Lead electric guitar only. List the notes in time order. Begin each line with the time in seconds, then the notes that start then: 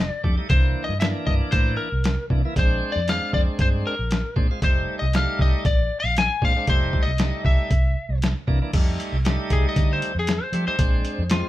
Already playing: D#5
0.09 D5
0.50 C5
0.84 D#5
1.00 E5
1.27 D#5
1.52 C5
1.77 A#4
2.59 C5
2.92 D5
3.09 F5
3.34 D5
3.62 C5
3.87 A#4
4.64 C5
4.99 D#5
5.16 F5
5.42 D#5
5.66 D5
6.00 F5
6.18 G#5
6.45 F5
6.70 C5
7.03 D#5
7.46 E5
9.53 G#4
9.69 D#5
9.93 C5
10.19 G#4
10.43 C5
10.68 C5
11.32 F4